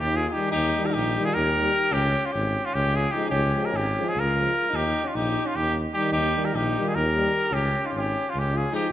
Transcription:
Already playing: D#2 D#4
0.00 G4
0.15 F4 G#4
0.27 F4 G#4
0.32 D#3 G3 D#4 G4
0.51 D#2 D#4 G4
0.76 D#3 G3
0.85 G4 A#4
0.91 A#1 D#4 G4
1.17 D#3 G3
1.25 F4 G#4
1.34 D#2 G4 A#4
1.58 D#3 G3
1.91 C#2 C#4 G4
2.24 C#4 F4
2.31 G#1 C#4 G4
2.65 C#4 F4
2.73 C#2 C#4 G4
2.95 F4 G#4
3.11 F3 G#3 D#4 G4
3.29 C#2 C#4 G4
3.55 F3 G#3
3.63 G4 A#4
3.71 G#1 C#4
3.76 G4
3.98 F3 G#3
4.05 F4 G#4
4.13 C#2 F4
4.19 A#4
4.39 F3 G#3
4.70 D#2 D#4
4.76 G4
5.04 C#4 F4
5.14 A#1 D#4 G4
5.45 C#4 F4
5.55 D#2 D#4 G4
5.94 D#3 G3 D#4 G4
6.11 D#2 D#4 G4
6.35 D#3 G3
6.45 G4 A#4
6.53 A#1 D#4 G4
6.77 D#3 G3
6.85 F4 G#4
6.95 D#2 G4 A#4
7.16 D#3 G3
7.51 C#2 C#4 G4
7.82 C#4 D#4 F4
7.90 G#1 C#4 F4 G4
7.96 C#4 G4
8.28 C#4 F4
8.34 C#2 C#4
8.39 G4
8.54 F4 G#4
8.71 F3 G#3 D#4 G4

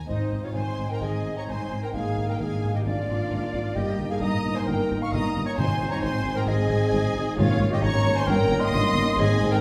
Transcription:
Already playing: D#4 D#5
0.08 G#1 G#2 C4 D#4 C5 D#5
0.19 G#2
0.25 C4
0.31 G#1 G#2
0.41 G#2 D#4 F4 C#5
0.45 C#5 F5
0.53 G#1 G#2 C5 G#5 C6
0.67 G#2
0.72 D#5
0.78 G#1 G#2
0.86 G#2 D#4 G5
0.91 A#4 G5 A#5
1.00 G#1 G#2 D#3 G#4 D#5 G#5
1.04 D#5
1.14 G#2 C4
1.25 G#1 G#2
1.33 D#4 A#5
1.38 C#5 A#5 C#6
1.47 G#1 G#2 C5 G#5 C6
1.60 G#2 D#5
1.71 G#1 G#2
1.79 D#4 A#4 G5
1.83 A#4 G5 A#5
1.93 G#1 G#2 A#3 G#4 F5 G#5
2.06 G#2 A#3
2.17 G#1 G#2
2.24 D4
2.29 G#2 A#4 G5 A#5
2.39 G#1 G#2 G#4 A#4 F5 G#5
2.51 G#2 D4
2.63 G#1 G#2
2.71 G#2 A#3 G5
2.75 G4 D#5
2.85 G#1 G#2 D4 F4 D5 F5
2.97 G#2 G#3
3.08 G#1 G#2
3.16 D4
3.30 G#1 G#2 A#4
3.41 G#2
3.46 D4
3.53 G#1 G#2
3.61 A#3
3.75 G1 G2 D#4 G4 D#5 G5
3.86 G2
3.91 A#3
3.99 G1 G2
4.07 G2 D#4 G#4 F5
4.11 G#4 F5 G#5
4.20 G1 G2 A#4 D#5 A#5 D#6
4.33 G2
4.37 D#4
4.45 G1 G2
4.52 G2 A#3 C5 G#5 C6
4.57 C5
4.66 G1 G2 A#4 G5 A#5
4.78 G2
4.83 G3
4.90 G1 G2
4.97 D#4
5.01 F5 C#6 F6
5.13 G1 G2 A#4 D#5 A#5 D#6
5.24 G2 D#4
5.35 G1 G2
5.43 A#3 C#5 A#5 C#6
5.56 G#1 G#2 C4 C5 G#5 C6
5.68 G#2
5.72 C4
5.79 G#1 G#2
5.87 G#2 D#4 A#5
5.91 C#5 A#5 C#6
6.01 G#1 G#2 C5 G#5 C6
6.13 G#2 G#4
6.24 G#1 G#2
6.31 D#4
6.35 G#2 A#4 G5 A#5
6.47 G#1 G#2 D#3 G#4 D#5 G#5
6.59 G#2 C4
6.69 G#1 G#2
6.76 D#4
6.91 G#1 G#2 C5
7.05 G#2
7.15 G#1 G#2
7.22 D#4
7.36 G#1 G#2 A#3 C#4 F4 C#5 F5
7.49 G#2 C#4
7.60 G#1 G#2
7.68 G#2 G#3 G4 D#5
7.72 G4 D#5 G5
7.82 G#1 G#2 A#3 C#4 C#5 A#5 C#6
7.94 G#2 A#4
8.05 G#1 G#2
8.13 G#2 C#4 C5 G#5
8.17 G#5 C6
8.26 G1 G2 A#3 C#4 A#4 G5 A#5
8.39 G2 C#4
8.49 G1 G2
8.58 D#4 D#5 C6
8.62 C6 D#6
8.72 G1 G2 C#5
8.84 G2
8.89 A#4
8.94 G1 G2
9.03 D#4
9.17 G#1 G#2 G#3 C4 G#4 D#5 G#5
9.30 G#2
9.34 C4
9.41 G#1 G#2
9.49 G#2 D#4 A#4 G5
9.54 A#5

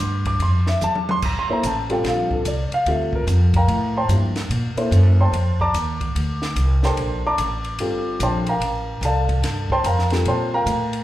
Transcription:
Already playing: G2
0.25 D6, kick, ride
0.39 F2 C6, ride
0.67 E5, snare
0.81 E2 A5, hi-hat pedal, mid tom
0.95 mid tom
1.09 C6, mid tom
1.22 G1 A#5, kick, crash
1.39 C6
1.49 A#3 E4 A4 C5, muted upright bass stroke
1.53 A#5
1.63 A1 A5, hi-hat pedal, ride
1.90 G3 C4 F4 A4 G5, ride
2.04 A#1, snare, ride
2.09 F5
2.31 A4, kick
2.45 C2 D5, hi-hat pedal, ride
2.71 F5, muted upright bass stroke, ride
2.86 D2 G3 C4 F4 A4, ride
2.90 E5
3.13 A#4, kick
3.27 F2, hi-hat pedal, ride
3.54 A#4 F5 G5 A#5, kick, ride
3.67 A2, ride
3.97 C5 G5 A5 C6
4.09 G2 F3 A#3 E4 G4, hi-hat pedal, ride
4.36 snare, ride
4.50 A#2, ride
4.76 A#3 E4 A4 C5, muted upright bass stroke, ride
4.91 F#2, hi-hat pedal, ride
5.20 C5 G5 A5 C6
5.32 F2, ride
5.60 D5 A5 A#5 D6, kick
5.74 D#2, hi-hat pedal, ride
6.01 kick, ride
6.15 D2, ride
6.42 snare
6.56 C2, hi-hat pedal, ride
6.83 D4 G4 A4 A#4 C5 G5 A5 C6, snare
6.97 A#1, ride
7.27 D5 A5 A#5 D6
7.38 A1, hi-hat pedal, ride
7.64 ride
7.79 G1 G3 C4 F4 A4, ride
8.20 A#1 C5 G5 A5 C6, hi-hat pedal, ride
8.46 A#4 F5 G5 A#5, ride
8.60 A1, ride
9.01 C2, hi-hat pedal, ride
9.05 A4 D5 F5 A5
9.29 kick, ride
9.42 G2, snare, ride
9.70 C5 G5 A5 C6, kick
9.84 F2 A#4 F5 G5 A#5, hi-hat pedal, ride
9.99 snare
10.10 G3 C4 F4 A4, snare, ride
10.25 A#2 C5 G5 A5 C6, ride
10.54 A#4 F5 G5 A#5
10.66 A2, hi-hat pedal, ride
10.93 ride

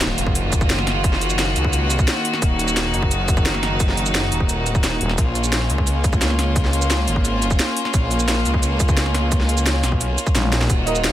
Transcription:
Already playing: D#1 D#3 A#3 F4 F#4, impact
0.01 snare, closed hi-hat, shaker
0.18 F#1, closed hi-hat, shaker
0.27 kick
0.35 closed hi-hat, shaker
0.52 kick, closed hi-hat, shaker
0.61 kick, shaker
0.70 snare, closed hi-hat, shaker
0.78 snare
0.87 snare, closed hi-hat
1.04 kick, closed hi-hat, shaker
1.13 snare
1.21 closed hi-hat, shaker
1.30 shaker
1.39 snare, closed hi-hat, shaker
1.56 C#2, closed hi-hat, shaker
1.65 kick
1.73 closed hi-hat, shaker
1.90 closed hi-hat, shaker
1.99 kick, shaker
2.08 snare, closed hi-hat, shaker
2.25 closed hi-hat
2.34 snare
2.42 D#1 D#4, kick, closed hi-hat, shaker
2.59 closed hi-hat, shaker
2.68 shaker
2.77 snare, closed hi-hat, shaker
2.94 F#1, closed hi-hat, shaker
3.03 kick
3.11 closed hi-hat, shaker
3.28 kick, closed hi-hat, shaker
3.37 kick, shaker
3.46 snare, closed hi-hat, shaker
3.54 snare
3.63 snare, closed hi-hat
3.80 kick, closed hi-hat, shaker
3.89 snare
3.97 closed hi-hat, shaker
4.06 shaker
4.15 snare, closed hi-hat, shaker
4.32 D#1, closed hi-hat, shaker
4.40 kick
4.49 closed hi-hat, shaker
4.66 closed hi-hat, shaker
4.75 kick, shaker
4.84 D#1, snare, closed hi-hat, shaker
5.01 D#1, closed hi-hat
5.09 snare
5.18 A#1 A#3 C#4 F4, kick, closed hi-hat, shaker
5.35 closed hi-hat, shaker
5.44 shaker
5.52 snare, closed hi-hat, shaker
5.70 C#2, closed hi-hat, shaker
5.78 kick
5.87 closed hi-hat, shaker
6.04 kick, closed hi-hat, shaker
6.13 kick, shaker
6.21 snare, closed hi-hat, shaker
6.30 snare
6.39 snare, closed hi-hat
6.56 kick, closed hi-hat, shaker
6.65 snare
6.73 closed hi-hat, shaker
6.82 shaker
6.90 snare, closed hi-hat, shaker
7.08 G#1, closed hi-hat, shaker
7.16 kick
7.25 closed hi-hat, shaker
7.42 closed hi-hat, shaker
7.51 kick, shaker
7.59 snare, closed hi-hat, shaker
7.77 closed hi-hat
7.85 snare
7.94 A#1, kick, closed hi-hat, shaker
8.11 closed hi-hat, shaker
8.20 shaker
8.28 snare, closed hi-hat, shaker
8.46 C#2, closed hi-hat, shaker
8.54 kick
8.63 closed hi-hat, shaker
8.80 kick, closed hi-hat, shaker
8.89 kick, shaker
8.97 snare, closed hi-hat, shaker
9.06 snare
9.15 snare, closed hi-hat
9.32 kick, closed hi-hat, shaker
9.40 snare
9.49 closed hi-hat, shaker
9.58 shaker
9.66 snare, closed hi-hat, shaker
9.84 B1, snare, closed hi-hat, shaker
9.92 kick
10.01 closed hi-hat, shaker
10.18 closed hi-hat, shaker
10.27 kick, shaker
10.35 A#1, snare, closed hi-hat, high tom, shaker
10.44 high tom
10.52 snare, closed hi-hat, shaker
10.61 snare
10.70 D#1 D#3 A#3 F4 F#4, kick, closed hi-hat, shaker
10.87 D#4 A#4 D#5, closed hi-hat, shaker
10.96 shaker
11.04 snare, closed hi-hat, shaker

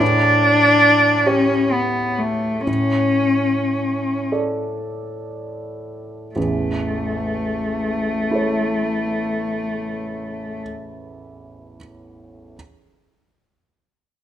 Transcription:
0.00 A2 D4
1.26 C#4 G4 C#5
1.72 B3
2.18 A3
2.67 A2 C#4
4.32 A4 D5
6.35 A1 E2 A3
8.31 E4 A4
8.35 C#5

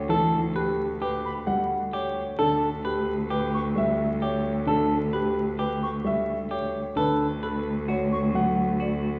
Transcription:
Already playing: D2
0.09 E3 A4
0.55 G4 B4
1.02 G4 B4
1.25 B5
1.47 G3 F#5
1.93 G4 C#5
2.39 D2 D3 A4
2.85 G4 B4
3.30 G4 B4
3.54 C#6
3.76 G3 E5
4.22 G4 C#5
4.67 D3 A4
5.13 G4 B4
5.59 G4 B4
5.83 C#6
6.04 G3 E5
6.51 G4 C#5
6.96 D2 D3 A4 B4
7.43 A4 B4
7.88 F#4 C#5
8.12 C#6
8.34 F#3 F#5
8.80 F#4 D5

